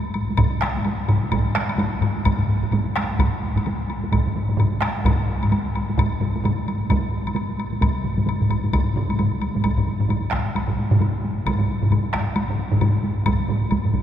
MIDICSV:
0, 0, Header, 1, 3, 480
1, 0, Start_track
1, 0, Tempo, 465477
1, 388, Time_signature, 4, 2, 24, 8
1, 7584, Tempo, 453858
1, 14638, End_track
2, 0, Start_track
2, 0, Title_t, "Taiko and cinematic ensemble drums"
2, 160, Note_on_c, 9, 48, 52
2, 263, Note_off_c, 9, 48, 0
2, 304, Note_on_c, 9, 48, 51
2, 382, Note_on_c, 9, 47, 91
2, 389, Note_on_c, 9, 41, 97
2, 400, Note_on_c, 9, 45, 91
2, 402, Note_off_c, 9, 48, 0
2, 402, Note_on_c, 9, 48, 60
2, 485, Note_off_c, 9, 47, 0
2, 492, Note_off_c, 9, 41, 0
2, 503, Note_off_c, 9, 45, 0
2, 505, Note_off_c, 9, 48, 0
2, 633, Note_on_c, 9, 37, 66
2, 640, Note_off_c, 9, 37, 0
2, 640, Note_on_c, 9, 37, 70
2, 648, Note_on_c, 9, 48, 53
2, 743, Note_off_c, 9, 37, 0
2, 751, Note_off_c, 9, 48, 0
2, 792, Note_on_c, 9, 48, 55
2, 882, Note_off_c, 9, 48, 0
2, 882, Note_on_c, 9, 48, 64
2, 986, Note_off_c, 9, 48, 0
2, 1113, Note_on_c, 9, 45, 96
2, 1116, Note_on_c, 9, 47, 94
2, 1122, Note_on_c, 9, 48, 53
2, 1216, Note_off_c, 9, 45, 0
2, 1219, Note_off_c, 9, 47, 0
2, 1225, Note_off_c, 9, 48, 0
2, 1268, Note_on_c, 9, 48, 46
2, 1354, Note_on_c, 9, 47, 83
2, 1360, Note_off_c, 9, 48, 0
2, 1360, Note_on_c, 9, 48, 63
2, 1361, Note_on_c, 9, 45, 91
2, 1364, Note_on_c, 9, 41, 91
2, 1457, Note_off_c, 9, 47, 0
2, 1463, Note_off_c, 9, 48, 0
2, 1464, Note_off_c, 9, 45, 0
2, 1467, Note_off_c, 9, 41, 0
2, 1598, Note_on_c, 9, 37, 76
2, 1606, Note_on_c, 9, 48, 49
2, 1701, Note_off_c, 9, 37, 0
2, 1709, Note_off_c, 9, 48, 0
2, 1747, Note_on_c, 9, 48, 53
2, 1836, Note_on_c, 9, 45, 95
2, 1838, Note_off_c, 9, 48, 0
2, 1838, Note_on_c, 9, 48, 66
2, 1839, Note_on_c, 9, 47, 91
2, 1939, Note_off_c, 9, 45, 0
2, 1942, Note_off_c, 9, 47, 0
2, 1942, Note_off_c, 9, 48, 0
2, 2071, Note_on_c, 9, 45, 90
2, 2081, Note_on_c, 9, 47, 84
2, 2088, Note_on_c, 9, 48, 56
2, 2174, Note_off_c, 9, 45, 0
2, 2184, Note_off_c, 9, 47, 0
2, 2192, Note_off_c, 9, 48, 0
2, 2223, Note_on_c, 9, 48, 54
2, 2314, Note_on_c, 9, 45, 60
2, 2324, Note_on_c, 9, 47, 62
2, 2326, Note_off_c, 9, 48, 0
2, 2328, Note_on_c, 9, 41, 100
2, 2328, Note_on_c, 9, 48, 70
2, 2417, Note_off_c, 9, 45, 0
2, 2427, Note_off_c, 9, 47, 0
2, 2431, Note_off_c, 9, 41, 0
2, 2431, Note_off_c, 9, 48, 0
2, 2457, Note_on_c, 9, 45, 64
2, 2464, Note_on_c, 9, 47, 67
2, 2560, Note_off_c, 9, 45, 0
2, 2560, Note_on_c, 9, 45, 69
2, 2562, Note_off_c, 9, 47, 0
2, 2562, Note_on_c, 9, 47, 57
2, 2572, Note_on_c, 9, 48, 59
2, 2663, Note_off_c, 9, 45, 0
2, 2665, Note_off_c, 9, 47, 0
2, 2675, Note_off_c, 9, 48, 0
2, 2703, Note_on_c, 9, 45, 67
2, 2712, Note_on_c, 9, 47, 60
2, 2720, Note_on_c, 9, 48, 56
2, 2799, Note_off_c, 9, 45, 0
2, 2799, Note_on_c, 9, 45, 87
2, 2809, Note_off_c, 9, 47, 0
2, 2809, Note_on_c, 9, 47, 91
2, 2819, Note_off_c, 9, 48, 0
2, 2819, Note_on_c, 9, 48, 70
2, 2902, Note_off_c, 9, 45, 0
2, 2912, Note_off_c, 9, 47, 0
2, 2922, Note_off_c, 9, 48, 0
2, 3048, Note_on_c, 9, 37, 73
2, 3049, Note_off_c, 9, 37, 0
2, 3049, Note_on_c, 9, 37, 64
2, 3066, Note_on_c, 9, 48, 52
2, 3152, Note_off_c, 9, 37, 0
2, 3169, Note_off_c, 9, 48, 0
2, 3284, Note_on_c, 9, 45, 84
2, 3285, Note_on_c, 9, 47, 89
2, 3292, Note_on_c, 9, 41, 92
2, 3301, Note_on_c, 9, 48, 72
2, 3387, Note_off_c, 9, 45, 0
2, 3388, Note_off_c, 9, 47, 0
2, 3395, Note_off_c, 9, 41, 0
2, 3405, Note_off_c, 9, 48, 0
2, 3540, Note_on_c, 9, 48, 49
2, 3644, Note_off_c, 9, 48, 0
2, 3673, Note_on_c, 9, 45, 63
2, 3673, Note_on_c, 9, 47, 73
2, 3686, Note_on_c, 9, 48, 54
2, 3776, Note_off_c, 9, 45, 0
2, 3776, Note_off_c, 9, 47, 0
2, 3780, Note_off_c, 9, 48, 0
2, 3780, Note_on_c, 9, 48, 72
2, 3883, Note_off_c, 9, 48, 0
2, 4023, Note_on_c, 9, 48, 50
2, 4127, Note_off_c, 9, 48, 0
2, 4162, Note_on_c, 9, 48, 58
2, 4246, Note_on_c, 9, 47, 69
2, 4249, Note_on_c, 9, 45, 59
2, 4250, Note_off_c, 9, 48, 0
2, 4250, Note_on_c, 9, 48, 64
2, 4251, Note_on_c, 9, 41, 88
2, 4349, Note_off_c, 9, 47, 0
2, 4352, Note_off_c, 9, 45, 0
2, 4353, Note_off_c, 9, 48, 0
2, 4354, Note_off_c, 9, 41, 0
2, 4390, Note_on_c, 9, 47, 74
2, 4398, Note_on_c, 9, 45, 64
2, 4492, Note_off_c, 9, 47, 0
2, 4492, Note_on_c, 9, 47, 63
2, 4493, Note_on_c, 9, 48, 55
2, 4499, Note_off_c, 9, 45, 0
2, 4499, Note_on_c, 9, 45, 63
2, 4595, Note_off_c, 9, 47, 0
2, 4596, Note_off_c, 9, 48, 0
2, 4602, Note_off_c, 9, 45, 0
2, 4627, Note_on_c, 9, 47, 66
2, 4630, Note_on_c, 9, 48, 54
2, 4637, Note_on_c, 9, 45, 59
2, 4714, Note_off_c, 9, 47, 0
2, 4714, Note_on_c, 9, 47, 95
2, 4728, Note_off_c, 9, 48, 0
2, 4728, Note_on_c, 9, 48, 67
2, 4731, Note_off_c, 9, 45, 0
2, 4731, Note_on_c, 9, 45, 90
2, 4817, Note_off_c, 9, 47, 0
2, 4831, Note_off_c, 9, 48, 0
2, 4834, Note_off_c, 9, 45, 0
2, 4960, Note_on_c, 9, 37, 68
2, 4966, Note_on_c, 9, 48, 58
2, 4970, Note_off_c, 9, 37, 0
2, 4970, Note_on_c, 9, 37, 68
2, 5069, Note_off_c, 9, 48, 0
2, 5073, Note_off_c, 9, 37, 0
2, 5197, Note_on_c, 9, 47, 92
2, 5208, Note_on_c, 9, 41, 100
2, 5212, Note_on_c, 9, 45, 96
2, 5213, Note_on_c, 9, 48, 71
2, 5300, Note_off_c, 9, 47, 0
2, 5311, Note_off_c, 9, 41, 0
2, 5315, Note_off_c, 9, 45, 0
2, 5316, Note_off_c, 9, 48, 0
2, 5458, Note_on_c, 9, 48, 54
2, 5561, Note_off_c, 9, 48, 0
2, 5589, Note_on_c, 9, 47, 65
2, 5597, Note_on_c, 9, 45, 64
2, 5601, Note_on_c, 9, 48, 55
2, 5691, Note_off_c, 9, 48, 0
2, 5691, Note_on_c, 9, 48, 69
2, 5692, Note_off_c, 9, 47, 0
2, 5700, Note_off_c, 9, 45, 0
2, 5794, Note_off_c, 9, 48, 0
2, 5930, Note_on_c, 9, 48, 54
2, 6033, Note_off_c, 9, 48, 0
2, 6083, Note_on_c, 9, 48, 56
2, 6159, Note_on_c, 9, 47, 91
2, 6162, Note_on_c, 9, 41, 98
2, 6165, Note_on_c, 9, 45, 89
2, 6175, Note_off_c, 9, 48, 0
2, 6175, Note_on_c, 9, 48, 71
2, 6263, Note_off_c, 9, 47, 0
2, 6265, Note_off_c, 9, 41, 0
2, 6268, Note_off_c, 9, 45, 0
2, 6278, Note_off_c, 9, 48, 0
2, 6399, Note_on_c, 9, 47, 86
2, 6401, Note_on_c, 9, 45, 90
2, 6406, Note_on_c, 9, 48, 54
2, 6502, Note_off_c, 9, 47, 0
2, 6504, Note_off_c, 9, 45, 0
2, 6509, Note_off_c, 9, 48, 0
2, 6554, Note_on_c, 9, 48, 62
2, 6636, Note_on_c, 9, 47, 91
2, 6640, Note_on_c, 9, 45, 96
2, 6649, Note_off_c, 9, 48, 0
2, 6649, Note_on_c, 9, 48, 70
2, 6739, Note_off_c, 9, 47, 0
2, 6743, Note_off_c, 9, 45, 0
2, 6752, Note_off_c, 9, 48, 0
2, 6890, Note_on_c, 9, 48, 58
2, 6993, Note_off_c, 9, 48, 0
2, 7112, Note_on_c, 9, 45, 93
2, 7113, Note_on_c, 9, 47, 87
2, 7118, Note_on_c, 9, 41, 96
2, 7122, Note_on_c, 9, 48, 72
2, 7215, Note_off_c, 9, 45, 0
2, 7217, Note_off_c, 9, 47, 0
2, 7221, Note_off_c, 9, 41, 0
2, 7225, Note_off_c, 9, 48, 0
2, 7362, Note_on_c, 9, 48, 53
2, 7465, Note_off_c, 9, 48, 0
2, 7504, Note_on_c, 9, 48, 54
2, 7585, Note_off_c, 9, 48, 0
2, 7585, Note_on_c, 9, 48, 67
2, 7691, Note_off_c, 9, 48, 0
2, 7830, Note_on_c, 9, 48, 53
2, 7936, Note_off_c, 9, 48, 0
2, 7975, Note_on_c, 9, 48, 53
2, 8069, Note_off_c, 9, 48, 0
2, 8069, Note_on_c, 9, 48, 65
2, 8071, Note_on_c, 9, 45, 63
2, 8073, Note_on_c, 9, 47, 59
2, 8076, Note_on_c, 9, 41, 94
2, 8175, Note_off_c, 9, 48, 0
2, 8176, Note_off_c, 9, 45, 0
2, 8179, Note_off_c, 9, 47, 0
2, 8182, Note_off_c, 9, 41, 0
2, 8306, Note_on_c, 9, 48, 54
2, 8313, Note_on_c, 9, 45, 67
2, 8316, Note_on_c, 9, 47, 63
2, 8412, Note_off_c, 9, 48, 0
2, 8419, Note_off_c, 9, 45, 0
2, 8422, Note_off_c, 9, 47, 0
2, 8453, Note_on_c, 9, 48, 58
2, 8458, Note_on_c, 9, 45, 60
2, 8464, Note_on_c, 9, 47, 63
2, 8549, Note_off_c, 9, 48, 0
2, 8549, Note_on_c, 9, 48, 69
2, 8552, Note_off_c, 9, 47, 0
2, 8552, Note_on_c, 9, 47, 60
2, 8559, Note_off_c, 9, 45, 0
2, 8559, Note_on_c, 9, 45, 66
2, 8655, Note_off_c, 9, 48, 0
2, 8657, Note_off_c, 9, 47, 0
2, 8664, Note_off_c, 9, 45, 0
2, 8705, Note_on_c, 9, 45, 64
2, 8705, Note_on_c, 9, 47, 66
2, 8794, Note_on_c, 9, 48, 56
2, 8797, Note_off_c, 9, 47, 0
2, 8797, Note_on_c, 9, 47, 68
2, 8807, Note_off_c, 9, 45, 0
2, 8807, Note_on_c, 9, 45, 66
2, 8900, Note_off_c, 9, 48, 0
2, 8903, Note_off_c, 9, 47, 0
2, 8913, Note_off_c, 9, 45, 0
2, 8942, Note_on_c, 9, 47, 68
2, 8944, Note_on_c, 9, 48, 47
2, 8945, Note_on_c, 9, 45, 65
2, 9036, Note_off_c, 9, 47, 0
2, 9036, Note_on_c, 9, 47, 88
2, 9039, Note_off_c, 9, 48, 0
2, 9039, Note_on_c, 9, 48, 66
2, 9042, Note_off_c, 9, 45, 0
2, 9042, Note_on_c, 9, 45, 85
2, 9043, Note_on_c, 9, 41, 93
2, 9142, Note_off_c, 9, 47, 0
2, 9145, Note_off_c, 9, 48, 0
2, 9148, Note_off_c, 9, 45, 0
2, 9149, Note_off_c, 9, 41, 0
2, 9281, Note_on_c, 9, 45, 86
2, 9284, Note_on_c, 9, 48, 45
2, 9285, Note_on_c, 9, 47, 98
2, 9387, Note_off_c, 9, 45, 0
2, 9390, Note_off_c, 9, 48, 0
2, 9391, Note_off_c, 9, 47, 0
2, 9425, Note_on_c, 9, 48, 51
2, 9520, Note_on_c, 9, 47, 84
2, 9525, Note_on_c, 9, 45, 92
2, 9530, Note_off_c, 9, 48, 0
2, 9530, Note_on_c, 9, 48, 62
2, 9625, Note_off_c, 9, 47, 0
2, 9631, Note_off_c, 9, 45, 0
2, 9635, Note_off_c, 9, 48, 0
2, 9762, Note_on_c, 9, 48, 52
2, 9868, Note_off_c, 9, 48, 0
2, 9905, Note_on_c, 9, 48, 54
2, 9906, Note_on_c, 9, 47, 66
2, 9918, Note_on_c, 9, 45, 66
2, 10003, Note_off_c, 9, 48, 0
2, 10003, Note_on_c, 9, 41, 83
2, 10003, Note_on_c, 9, 48, 61
2, 10012, Note_off_c, 9, 47, 0
2, 10023, Note_off_c, 9, 45, 0
2, 10109, Note_off_c, 9, 41, 0
2, 10109, Note_off_c, 9, 48, 0
2, 10143, Note_on_c, 9, 47, 88
2, 10144, Note_on_c, 9, 45, 77
2, 10248, Note_off_c, 9, 47, 0
2, 10249, Note_on_c, 9, 48, 49
2, 10250, Note_off_c, 9, 45, 0
2, 10354, Note_off_c, 9, 48, 0
2, 10378, Note_on_c, 9, 47, 73
2, 10385, Note_on_c, 9, 45, 79
2, 10399, Note_on_c, 9, 48, 20
2, 10473, Note_off_c, 9, 47, 0
2, 10473, Note_on_c, 9, 47, 83
2, 10485, Note_off_c, 9, 48, 0
2, 10485, Note_on_c, 9, 48, 56
2, 10486, Note_off_c, 9, 45, 0
2, 10486, Note_on_c, 9, 45, 80
2, 10487, Note_on_c, 9, 41, 58
2, 10579, Note_off_c, 9, 47, 0
2, 10591, Note_off_c, 9, 48, 0
2, 10592, Note_off_c, 9, 45, 0
2, 10593, Note_off_c, 9, 41, 0
2, 10645, Note_on_c, 9, 48, 20
2, 10708, Note_on_c, 9, 37, 65
2, 10727, Note_off_c, 9, 37, 0
2, 10727, Note_on_c, 9, 37, 61
2, 10730, Note_on_c, 9, 41, 61
2, 10735, Note_off_c, 9, 48, 0
2, 10735, Note_on_c, 9, 48, 48
2, 10833, Note_off_c, 9, 37, 0
2, 10836, Note_off_c, 9, 41, 0
2, 10841, Note_off_c, 9, 48, 0
2, 10879, Note_on_c, 9, 48, 17
2, 10966, Note_off_c, 9, 48, 0
2, 10966, Note_on_c, 9, 48, 64
2, 11072, Note_off_c, 9, 48, 0
2, 11102, Note_on_c, 9, 47, 75
2, 11106, Note_on_c, 9, 45, 77
2, 11111, Note_on_c, 9, 48, 20
2, 11208, Note_off_c, 9, 47, 0
2, 11211, Note_off_c, 9, 48, 0
2, 11211, Note_on_c, 9, 48, 46
2, 11212, Note_off_c, 9, 45, 0
2, 11317, Note_off_c, 9, 48, 0
2, 11344, Note_on_c, 9, 45, 88
2, 11346, Note_on_c, 9, 47, 93
2, 11352, Note_on_c, 9, 48, 18
2, 11439, Note_off_c, 9, 45, 0
2, 11439, Note_on_c, 9, 45, 84
2, 11441, Note_off_c, 9, 47, 0
2, 11441, Note_on_c, 9, 47, 80
2, 11447, Note_off_c, 9, 48, 0
2, 11447, Note_on_c, 9, 48, 64
2, 11545, Note_off_c, 9, 45, 0
2, 11546, Note_off_c, 9, 47, 0
2, 11553, Note_off_c, 9, 48, 0
2, 11609, Note_on_c, 9, 48, 19
2, 11701, Note_off_c, 9, 48, 0
2, 11701, Note_on_c, 9, 48, 47
2, 11806, Note_off_c, 9, 48, 0
2, 11846, Note_on_c, 9, 48, 21
2, 11925, Note_on_c, 9, 41, 92
2, 11944, Note_off_c, 9, 48, 0
2, 11944, Note_on_c, 9, 48, 63
2, 12031, Note_off_c, 9, 41, 0
2, 12050, Note_off_c, 9, 48, 0
2, 12064, Note_on_c, 9, 47, 83
2, 12072, Note_on_c, 9, 45, 77
2, 12073, Note_on_c, 9, 48, 45
2, 12170, Note_off_c, 9, 47, 0
2, 12177, Note_off_c, 9, 45, 0
2, 12178, Note_off_c, 9, 48, 0
2, 12302, Note_on_c, 9, 47, 81
2, 12308, Note_on_c, 9, 45, 81
2, 12311, Note_on_c, 9, 48, 21
2, 12397, Note_off_c, 9, 48, 0
2, 12397, Note_on_c, 9, 48, 62
2, 12402, Note_off_c, 9, 45, 0
2, 12402, Note_on_c, 9, 45, 80
2, 12404, Note_off_c, 9, 47, 0
2, 12404, Note_on_c, 9, 47, 82
2, 12411, Note_on_c, 9, 41, 64
2, 12502, Note_off_c, 9, 48, 0
2, 12507, Note_off_c, 9, 45, 0
2, 12510, Note_off_c, 9, 47, 0
2, 12517, Note_off_c, 9, 41, 0
2, 12551, Note_on_c, 9, 48, 21
2, 12640, Note_on_c, 9, 37, 62
2, 12642, Note_off_c, 9, 37, 0
2, 12642, Note_on_c, 9, 37, 63
2, 12651, Note_on_c, 9, 41, 63
2, 12652, Note_off_c, 9, 48, 0
2, 12652, Note_on_c, 9, 48, 49
2, 12747, Note_off_c, 9, 37, 0
2, 12756, Note_off_c, 9, 41, 0
2, 12757, Note_off_c, 9, 48, 0
2, 12797, Note_on_c, 9, 48, 19
2, 12881, Note_off_c, 9, 48, 0
2, 12881, Note_on_c, 9, 48, 67
2, 12986, Note_off_c, 9, 48, 0
2, 13020, Note_on_c, 9, 45, 81
2, 13025, Note_on_c, 9, 47, 76
2, 13028, Note_on_c, 9, 48, 22
2, 13121, Note_off_c, 9, 48, 0
2, 13121, Note_on_c, 9, 48, 52
2, 13126, Note_off_c, 9, 45, 0
2, 13130, Note_off_c, 9, 47, 0
2, 13227, Note_off_c, 9, 48, 0
2, 13261, Note_on_c, 9, 45, 85
2, 13263, Note_on_c, 9, 47, 96
2, 13277, Note_on_c, 9, 48, 22
2, 13355, Note_off_c, 9, 45, 0
2, 13355, Note_on_c, 9, 45, 92
2, 13357, Note_off_c, 9, 47, 0
2, 13357, Note_on_c, 9, 47, 82
2, 13361, Note_off_c, 9, 48, 0
2, 13361, Note_on_c, 9, 48, 67
2, 13461, Note_off_c, 9, 45, 0
2, 13463, Note_off_c, 9, 47, 0
2, 13467, Note_off_c, 9, 48, 0
2, 13505, Note_on_c, 9, 48, 22
2, 13600, Note_off_c, 9, 48, 0
2, 13600, Note_on_c, 9, 48, 56
2, 13706, Note_off_c, 9, 48, 0
2, 13743, Note_on_c, 9, 48, 22
2, 13827, Note_on_c, 9, 45, 82
2, 13831, Note_on_c, 9, 47, 76
2, 13834, Note_off_c, 9, 48, 0
2, 13834, Note_on_c, 9, 48, 67
2, 13838, Note_on_c, 9, 41, 76
2, 13932, Note_off_c, 9, 45, 0
2, 13937, Note_off_c, 9, 47, 0
2, 13940, Note_off_c, 9, 48, 0
2, 13943, Note_off_c, 9, 41, 0
2, 13979, Note_on_c, 9, 48, 46
2, 14061, Note_on_c, 9, 45, 79
2, 14065, Note_on_c, 9, 47, 86
2, 14083, Note_off_c, 9, 48, 0
2, 14083, Note_on_c, 9, 48, 56
2, 14167, Note_off_c, 9, 45, 0
2, 14171, Note_off_c, 9, 47, 0
2, 14188, Note_off_c, 9, 48, 0
2, 14228, Note_on_c, 9, 48, 22
2, 14302, Note_on_c, 9, 45, 58
2, 14305, Note_on_c, 9, 47, 66
2, 14310, Note_on_c, 9, 41, 58
2, 14317, Note_off_c, 9, 48, 0
2, 14317, Note_on_c, 9, 48, 70
2, 14408, Note_off_c, 9, 45, 0
2, 14411, Note_off_c, 9, 47, 0
2, 14416, Note_off_c, 9, 41, 0
2, 14422, Note_off_c, 9, 48, 0
2, 14446, Note_on_c, 9, 45, 59
2, 14449, Note_on_c, 9, 47, 60
2, 14457, Note_on_c, 9, 48, 22
2, 14539, Note_off_c, 9, 47, 0
2, 14539, Note_on_c, 9, 47, 60
2, 14541, Note_off_c, 9, 45, 0
2, 14541, Note_on_c, 9, 45, 59
2, 14548, Note_off_c, 9, 48, 0
2, 14548, Note_on_c, 9, 41, 60
2, 14548, Note_on_c, 9, 48, 52
2, 14638, Note_off_c, 9, 41, 0
2, 14638, Note_off_c, 9, 45, 0
2, 14638, Note_off_c, 9, 47, 0
2, 14638, Note_off_c, 9, 48, 0
2, 14638, End_track
3, 0, Start_track
3, 0, Title_t, "Drums"
3, 146, Note_on_c, 9, 76, 46
3, 249, Note_off_c, 9, 76, 0
3, 386, Note_on_c, 9, 76, 58
3, 490, Note_off_c, 9, 76, 0
3, 872, Note_on_c, 9, 76, 39
3, 975, Note_off_c, 9, 76, 0
3, 1120, Note_on_c, 9, 76, 42
3, 1223, Note_off_c, 9, 76, 0
3, 1359, Note_on_c, 9, 76, 52
3, 1462, Note_off_c, 9, 76, 0
3, 1747, Note_on_c, 9, 76, 45
3, 1849, Note_off_c, 9, 76, 0
3, 1849, Note_on_c, 9, 76, 39
3, 1952, Note_off_c, 9, 76, 0
3, 2084, Note_on_c, 9, 76, 42
3, 2187, Note_off_c, 9, 76, 0
3, 2324, Note_on_c, 9, 76, 56
3, 2427, Note_off_c, 9, 76, 0
3, 2807, Note_on_c, 9, 76, 36
3, 2910, Note_off_c, 9, 76, 0
3, 3049, Note_on_c, 9, 76, 39
3, 3152, Note_off_c, 9, 76, 0
3, 3297, Note_on_c, 9, 76, 52
3, 3400, Note_off_c, 9, 76, 0
3, 3686, Note_on_c, 9, 76, 40
3, 3774, Note_off_c, 9, 76, 0
3, 3774, Note_on_c, 9, 76, 36
3, 3877, Note_off_c, 9, 76, 0
3, 4020, Note_on_c, 9, 76, 39
3, 4123, Note_off_c, 9, 76, 0
3, 4255, Note_on_c, 9, 76, 49
3, 4358, Note_off_c, 9, 76, 0
3, 4741, Note_on_c, 9, 76, 41
3, 4844, Note_off_c, 9, 76, 0
3, 4982, Note_on_c, 9, 76, 39
3, 5085, Note_off_c, 9, 76, 0
3, 5218, Note_on_c, 9, 76, 51
3, 5321, Note_off_c, 9, 76, 0
3, 5598, Note_on_c, 9, 76, 43
3, 5693, Note_off_c, 9, 76, 0
3, 5693, Note_on_c, 9, 76, 41
3, 5796, Note_off_c, 9, 76, 0
3, 5934, Note_on_c, 9, 76, 43
3, 6037, Note_off_c, 9, 76, 0
3, 6178, Note_on_c, 9, 76, 56
3, 6281, Note_off_c, 9, 76, 0
3, 6655, Note_on_c, 9, 76, 42
3, 6758, Note_off_c, 9, 76, 0
3, 6889, Note_on_c, 9, 76, 41
3, 6992, Note_off_c, 9, 76, 0
3, 7116, Note_on_c, 9, 76, 51
3, 7219, Note_off_c, 9, 76, 0
3, 7497, Note_on_c, 9, 76, 44
3, 7592, Note_off_c, 9, 76, 0
3, 7592, Note_on_c, 9, 76, 42
3, 7698, Note_off_c, 9, 76, 0
3, 7839, Note_on_c, 9, 76, 42
3, 7945, Note_off_c, 9, 76, 0
3, 8078, Note_on_c, 9, 76, 59
3, 8184, Note_off_c, 9, 76, 0
3, 8571, Note_on_c, 9, 76, 42
3, 8677, Note_off_c, 9, 76, 0
3, 8801, Note_on_c, 9, 76, 44
3, 8907, Note_off_c, 9, 76, 0
3, 9043, Note_on_c, 9, 76, 53
3, 9149, Note_off_c, 9, 76, 0
3, 9430, Note_on_c, 9, 76, 39
3, 9525, Note_off_c, 9, 76, 0
3, 9525, Note_on_c, 9, 76, 41
3, 9631, Note_off_c, 9, 76, 0
3, 9763, Note_on_c, 9, 76, 41
3, 9869, Note_off_c, 9, 76, 0
3, 10000, Note_on_c, 9, 76, 49
3, 10106, Note_off_c, 9, 76, 0
3, 10491, Note_on_c, 9, 76, 35
3, 10597, Note_off_c, 9, 76, 0
3, 10974, Note_on_c, 9, 76, 45
3, 11080, Note_off_c, 9, 76, 0
3, 11457, Note_on_c, 9, 76, 34
3, 11563, Note_off_c, 9, 76, 0
3, 11932, Note_on_c, 9, 76, 48
3, 12038, Note_off_c, 9, 76, 0
3, 12411, Note_on_c, 9, 76, 35
3, 12517, Note_off_c, 9, 76, 0
3, 12876, Note_on_c, 9, 76, 49
3, 12981, Note_off_c, 9, 76, 0
3, 13357, Note_on_c, 9, 76, 39
3, 13462, Note_off_c, 9, 76, 0
3, 13829, Note_on_c, 9, 76, 59
3, 13934, Note_off_c, 9, 76, 0
3, 14303, Note_on_c, 9, 76, 42
3, 14409, Note_off_c, 9, 76, 0
3, 14638, End_track
0, 0, End_of_file